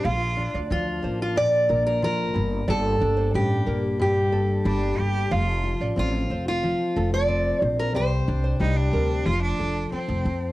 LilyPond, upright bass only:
\new Staff \with { instrumentName = "Upright bass" } { \clef bass \time 4/4 \key f \mixolydian \tempo 4 = 91 bes,,8. d,16 d,8 a,,8. r16 bes,,4 g,,8 | g,,8 g,,8 a,,8 bes,,4 g,,8 g,,8 g,,8 | f,,8. a,,16 a,,8 f,,8. r16 f,,4 bes,,8 | c,8 c,8 c,8 d,8 f,,8 f,,8 r16 f,,16 f,8 | }